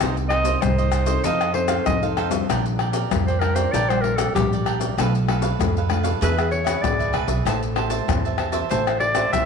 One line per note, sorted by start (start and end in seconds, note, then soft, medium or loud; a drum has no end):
0.00 0.54 C2 medium
0.00 0.59 C3 medium
0.00 0.29 A#3 medium
0.00 0.30 D#4 medium
0.00 0.15 D#4 medium
0.00 0.30 G4 medium
0.00 0.16 A#4 medium
0.00 0.16 C5 medium
0.00 0.16 D#5 medium
0.00 pandeiro medium
0.00 tamborim medium
0.00 maracas medium
0.00 surdo medium
0.17 muted cavaquinho stroke soft
0.17 pandeiro soft
0.17 maracas soft
0.17 surdo soft
0.29 0.45 D#4 medium
0.29 0.44 A#4 medium
0.29 0.44 C5 medium
0.29 0.63 D#5 loud
0.29 0.43 D#5 medium
0.29 pandeiro medium
0.29 tamborim medium
0.29 surdo soft
0.43 0.71 A#3 medium
0.43 0.71 D#4 medium
0.43 0.72 G4 medium
0.43 0.76 A#4 medium
0.43 0.76 C5 medium
0.43 0.75 D#5 medium
0.43 pandeiro medium
0.43 maracas medium
0.62 1.16 C2 medium
0.62 1.21 G2 medium
0.62 1.26 C5 medium
0.62 pandeiro medium
0.62 tamborim medium
0.62 maracas medium
0.62 surdo loud
0.78 1.04 A#3 medium
0.78 1.04 D#4 medium
0.78 1.05 G4 medium
0.78 0.91 A#4 soft
0.78 0.92 C5 soft
0.78 0.92 D#5 soft
0.78 pandeiro soft
0.78 maracas soft
0.92 1.07 D#4 soft
0.92 1.07 A#4 medium
0.92 1.06 C5 medium
0.92 1.05 D#5 medium
0.92 pandeiro medium
0.92 tamborim medium
0.92 maracas medium
1.06 1.50 C4 medium
1.06 1.50 D#4 medium
1.06 1.50 A4 medium
1.06 1.23 A#4 medium
1.06 1.22 C5 medium
1.06 1.22 D#5 medium
1.06 pandeiro medium
1.06 maracas medium
1.06 surdo soft
1.24 1.77 F2 medium
1.24 1.83 F3 medium
1.24 1.39 D#4 medium
1.24 1.39 A4 medium
1.24 1.39 C5 medium
1.24 1.54 D#5 medium
1.24 1.40 F5 medium
1.24 pandeiro medium
1.24 maracas medium
1.24 surdo medium
1.41 1.54 A4 soft
1.41 1.54 C5 soft
1.41 1.55 F5 medium
1.41 pandeiro soft
1.41 tamborim medium
1.41 maracas soft
1.53 1.96 C4 medium
1.53 1.96 D#4 medium
1.53 1.97 A4 medium
1.53 1.84 C5 medium
1.53 muted cavaquinho stroke soft
1.53 pandeiro medium
1.68 2.01 A4 medium
1.68 2.00 C5 medium
1.68 2.00 F5 medium
1.68 pandeiro medium
1.68 tamborim medium
1.68 maracas medium
1.68 surdo soft
1.85 2.40 F2 medium
1.85 2.45 C3 medium
1.85 2.05 D#5 medium
1.85 pandeiro medium
1.85 tamborim medium
1.85 maracas medium
1.85 surdo loud
2.02 2.28 C4 medium
2.02 2.28 D#4 medium
2.02 2.29 A4 medium
2.02 2.16 A4 soft
2.02 2.17 C5 soft
2.02 2.17 F5 medium
2.02 pandeiro soft
2.02 maracas soft
2.17 2.32 D#4 medium
2.17 2.32 A4 medium
2.17 2.31 C5 medium
2.17 2.30 F5 medium
2.17 pandeiro medium
2.17 tamborim medium
2.30 2.89 G3 medium
2.30 2.89 D4 medium
2.30 2.89 F4 medium
2.30 2.47 A4 soft
2.30 2.47 C5 soft
2.30 2.47 F5 soft
2.30 pandeiro medium
2.30 maracas medium
2.30 surdo soft
2.49 3.02 A#1 medium
2.49 3.08 A#2 medium
2.49 2.63 D4 medium
2.49 2.64 A#4 medium
2.49 2.64 D5 medium
2.49 2.64 G5 medium
2.49 pandeiro medium
2.49 tamborim medium
2.49 maracas medium
2.49 surdo medium
2.65 muted cavaquinho stroke soft
2.65 pandeiro soft
2.65 maracas soft
2.65 surdo soft
2.79 2.94 D4 medium
2.79 2.94 A#4 soft
2.79 2.94 D5 medium
2.79 2.92 G5 medium
2.79 pandeiro medium
2.79 tamborim medium
2.93 3.25 A#4 medium
2.93 3.25 D5 medium
2.93 3.24 G5 medium
2.93 pandeiro medium
2.93 maracas medium
3.10 3.64 F2 loud
3.10 3.70 F3 medium
3.10 3.37 G3 medium
3.10 3.37 D4 medium
3.10 3.37 F4 medium
3.10 pandeiro medium
3.10 tamborim medium
3.10 maracas medium
3.10 surdo loud
3.27 3.41 A#4 soft
3.27 3.41 C5 medium
3.27 3.42 D5 soft
3.27 3.42 G5 medium
3.27 pandeiro soft
3.27 maracas soft
3.39 3.83 G3 medium
3.39 3.56 D4 soft
3.39 3.84 D4 medium
3.39 3.84 F4 medium
3.39 3.57 A#4 medium
3.39 3.56 A#4 medium
3.39 3.55 D5 soft
3.39 3.54 G5 medium
3.39 pandeiro medium
3.39 tamborim medium
3.55 3.72 A#4 medium
3.55 3.73 C5 medium
3.55 3.71 D5 medium
3.55 3.71 G5 medium
3.55 pandeiro medium
3.55 maracas medium
3.55 surdo soft
3.72 4.26 A#1 medium
3.72 4.32 A#2 medium
3.72 3.88 D4 medium
3.72 3.88 A#4 medium
3.72 3.91 D5 loud
3.72 3.88 D5 medium
3.72 3.88 G5 medium
3.72 pandeiro medium
3.72 maracas medium
3.72 surdo medium
3.89 4.31 G3 medium
3.89 4.31 D4 medium
3.89 4.31 F4 medium
3.89 4.03 A#4 soft
3.89 4.03 C5 medium
3.89 4.04 D5 soft
3.89 4.04 G5 soft
3.89 pandeiro soft
3.89 tamborim medium
3.89 maracas soft
4.01 4.17 A#4 medium
4.01 muted cavaquinho stroke soft
4.01 pandeiro medium
4.16 4.33 A4 medium
4.16 4.50 A#4 medium
4.16 4.49 D5 medium
4.16 4.49 G5 medium
4.16 pandeiro medium
4.16 tamborim medium
4.16 maracas medium
4.16 surdo soft
4.35 4.88 A#1 medium
4.35 4.94 F3 medium
4.35 4.93 G3 medium
4.35 4.93 D4 medium
4.35 4.93 F4 medium
4.35 4.54 G4 medium
4.35 pandeiro medium
4.35 tamborim medium
4.35 maracas medium
4.35 surdo loud
4.53 4.65 A#4 soft
4.53 4.66 D5 soft
4.53 4.66 G5 soft
4.53 pandeiro soft
4.53 maracas soft
4.66 4.80 D4 medium
4.66 4.81 A#4 medium
4.66 4.80 D5 medium
4.66 4.79 G5 medium
4.66 pandeiro medium
4.66 tamborim medium
4.80 4.96 A#4 soft
4.80 4.96 D5 soft
4.80 4.95 G5 soft
4.80 pandeiro medium
4.80 maracas medium
4.80 surdo soft
4.97 5.50 B1 medium
4.97 5.56 B2 medium
4.97 5.16 A3 medium
4.97 5.16 D4 medium
4.97 5.12 D4 medium
4.97 5.16 F4 medium
4.97 5.13 A4 medium
4.97 5.13 B4 medium
4.97 5.13 F5 medium
4.97 pandeiro medium
4.97 tamborim medium
4.97 maracas medium
4.97 surdo medium
5.15 muted cavaquinho stroke soft
5.15 pandeiro soft
5.15 maracas soft
5.15 surdo soft
5.26 5.46 A3 medium
5.26 5.46 D4 medium
5.26 5.43 D4 soft
5.26 5.46 F4 medium
5.26 5.43 A4 medium
5.26 5.43 B4 medium
5.26 5.42 F5 medium
5.26 pandeiro medium
5.26 tamborim medium
5.42 5.74 A4 medium
5.42 5.74 B4 medium
5.42 5.73 F5 medium
5.42 pandeiro medium
5.42 maracas medium
5.59 6.12 F2 medium
5.59 6.19 B2 medium
5.59 5.78 A3 medium
5.59 5.78 D4 medium
5.59 5.78 F4 medium
5.59 pandeiro medium
5.59 tamborim medium
5.59 maracas medium
5.59 surdo loud
5.77 5.89 A4 soft
5.77 5.89 B4 soft
5.77 5.90 F5 soft
5.77 pandeiro soft
5.77 maracas soft
5.89 6.11 A3 medium
5.89 6.04 D4 soft
5.89 6.11 D4 medium
5.89 6.11 F4 medium
5.89 6.04 A4 soft
5.89 6.03 B4 medium
5.89 6.02 F5 soft
5.89 pandeiro medium
5.89 tamborim medium
6.03 6.20 A4 medium
6.03 6.20 B4 medium
6.03 6.19 F5 medium
6.03 pandeiro medium
6.03 maracas medium
6.03 surdo soft
6.21 6.75 E2 medium
6.21 6.81 E3 medium
6.21 6.31 B3 medium
6.21 6.36 D4 medium
6.21 6.31 D4 soft
6.21 6.36 G#4 medium
6.21 6.31 G#4 medium
6.21 6.37 B4 medium
6.21 6.51 B4 medium
6.21 6.36 E5 medium
6.21 pandeiro medium
6.21 maracas medium
6.21 surdo medium
6.38 6.80 B3 medium
6.38 6.80 D4 medium
6.38 6.80 G#4 medium
6.38 6.50 G#4 soft
6.38 6.50 B4 soft
6.38 6.51 E5 soft
6.38 pandeiro soft
6.38 tamborim medium
6.38 maracas soft
6.51 6.83 C#5 medium
6.51 muted cavaquinho stroke soft
6.51 pandeiro medium
6.65 6.98 G#4 medium
6.65 6.97 B4 medium
6.65 6.96 E5 medium
6.65 pandeiro medium
6.65 tamborim medium
6.65 maracas medium
6.65 surdo soft
6.82 6.97 E2 medium
6.82 7.43 B2 medium
6.82 7.24 B3 medium
6.82 7.25 D4 medium
6.82 7.25 G#4 medium
6.82 7.14 D5 medium
6.82 pandeiro medium
6.82 tamborim medium
6.82 maracas medium
6.82 surdo loud
6.99 7.13 D2 medium
6.99 7.12 G#4 soft
6.99 7.13 B4 soft
6.99 7.13 E5 soft
6.99 pandeiro soft
6.99 maracas soft
7.13 7.27 C#2 medium
7.13 7.28 D4 medium
7.13 7.28 G#4 medium
7.13 7.27 B4 medium
7.13 7.26 E5 medium
7.13 pandeiro medium
7.13 tamborim medium
7.27 7.43 B1 medium
7.27 7.44 G#4 soft
7.27 7.44 B4 soft
7.27 7.43 E5 soft
7.27 pandeiro medium
7.27 maracas medium
7.27 surdo soft
7.45 7.99 A1 medium
7.45 8.05 A3 medium
7.45 7.86 E4 medium
7.45 7.60 G4 medium
7.45 7.87 G4 medium
7.45 7.61 C5 medium
7.45 7.87 C5 medium
7.45 7.61 E5 medium
7.45 7.61 A5 medium
7.45 pandeiro medium
7.45 tamborim medium
7.45 maracas medium
7.45 surdo medium
7.62 muted cavaquinho stroke soft
7.62 pandeiro soft
7.62 maracas soft
7.62 surdo soft
7.76 7.91 G4 soft
7.76 7.91 C5 medium
7.76 7.90 E5 medium
7.76 7.89 A5 medium
7.76 pandeiro medium
7.76 tamborim medium
7.90 8.22 C5 medium
7.90 8.22 E5 medium
7.90 8.21 A5 medium
7.90 pandeiro medium
7.90 maracas medium
8.08 8.61 E2 loud
8.08 8.68 E3 medium
8.08 8.35 E4 soft
8.08 8.35 G4 medium
8.08 8.35 C5 medium
8.08 pandeiro medium
8.08 tamborim medium
8.08 maracas medium
8.08 surdo loud
8.25 8.37 C5 soft
8.25 8.38 E5 soft
8.25 8.38 A5 medium
8.25 pandeiro soft
8.25 maracas soft
8.38 8.68 E4 medium
8.38 8.53 G4 soft
8.38 8.68 G4 medium
8.38 8.53 C5 medium
8.38 8.68 C5 medium
8.38 8.52 E5 medium
8.38 8.51 A5 medium
8.38 pandeiro medium
8.38 tamborim medium
8.52 8.69 C5 medium
8.52 8.69 E5 medium
8.52 8.68 A5 medium
8.52 pandeiro medium
8.52 maracas medium
8.52 surdo soft
8.69 9.24 A1 medium
8.69 9.30 A3 medium
8.69 8.85 G4 medium
8.69 8.99 C5 medium
8.69 8.85 C5 medium
8.69 8.85 E5 medium
8.69 8.86 A5 medium
8.69 pandeiro medium
8.69 maracas medium
8.69 surdo medium
8.87 9.28 E4 medium
8.87 9.29 G4 medium
8.87 9.29 C5 medium
8.87 9.00 C5 soft
8.87 9.00 E5 soft
8.87 9.00 A5 soft
8.87 pandeiro soft
8.87 tamborim medium
8.87 maracas soft
9.00 9.30 D5 medium
9.00 muted cavaquinho stroke soft
9.00 pandeiro medium
9.15 9.46 C5 medium
9.15 9.46 E5 medium
9.15 9.46 A5 medium
9.15 pandeiro medium
9.15 tamborim medium
9.15 maracas medium
9.15 surdo soft
9.32 9.46 A1 medium
9.32 9.46 E3 medium
9.32 9.46 E4 medium
9.32 9.46 G4 medium
9.32 9.46 C5 medium
9.32 9.46 E5 medium
9.32 pandeiro medium
9.32 tamborim medium
9.32 maracas medium
9.32 surdo loud